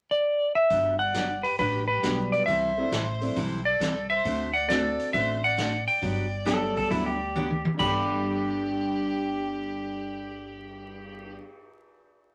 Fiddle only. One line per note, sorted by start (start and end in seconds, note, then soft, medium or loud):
1.00 1.41 D5 medium
1.43 1.57 G4 medium
1.58 1.86 G4 medium
1.89 2.30 G4 medium
2.33 2.46 B4 medium
2.47 3.62 C5 medium
3.67 4.08 A4 medium
4.10 4.51 C5 medium
4.53 4.68 D5 medium
4.70 5.11 A4 medium
5.14 5.41 C5 medium
5.44 5.85 D5 medium
5.88 7.61 D5 medium
7.79 11.35 G4 medium